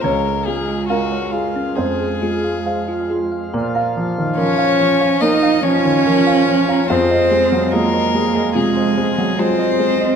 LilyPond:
<<
  \new Staff \with { instrumentName = "Synth pluck" } { \time 4/4 \key bes \minor \tempo 4 = 71 des'16 r16 f'16 f'16 des'16 des''16 aes'16 des'16 c''16 aes'16 f'16 f''16 c''16 f'16 aes'16 f''16 | bes'16 bes''16 r8 bes'16 f''16 des''16 des''16 bes'16 f''16 f''16 des''16 bes'16 f''16 des''16 bes''16 | f'16 ees''16 r8 f'16 c''16 aes'16 aes'16 f'16 c''16 c''16 aes'16 f'16 c''16 aes'16 ees''16 | }
  \new Staff \with { instrumentName = "Violin" } { \time 4/4 \key bes \minor bes'8 aes'8 ges'8 f'8 aes'4. r8 | r4 des''4 ees''8 des''4. | c''4 bes'4 aes'4 c''4 | }
  \new Staff \with { instrumentName = "Harmonium" } { \time 4/4 \key bes \minor <aes f''>1 | <f f' f''>1 | <aes f' ees''>1 | }
  \new Staff \with { instrumentName = "Cello" } { \time 4/4 \key bes \minor aes2 aes4.~ aes16 r16 | r4 des'4 ees'8 des'4. | c'4 bes4 aes4 c'4 | }
  \new Staff \with { instrumentName = "Grand piano" } { \time 4/4 \key bes \minor des''4 bes'4 c''4. r8 | r1 | r1 | }
  \new Staff \with { instrumentName = "Grand piano" } { \clef bass \time 4/4 \key bes \minor des,8 aes8 f''8 f'8 f,8 aes8 f''8 f'8 | bes,16 f''16 f16 ees16 f16 f''16 f16 f''16 bes16 f''16 f16 ees16 f16 f''16 f16 f''16 | f,16 ees''16 aes16 ges16 aes16 ees''16 aes16 ees''16 c16 ees''16 aes16 ges16 aes16 ees''16 aes16 ees''16 | }
>>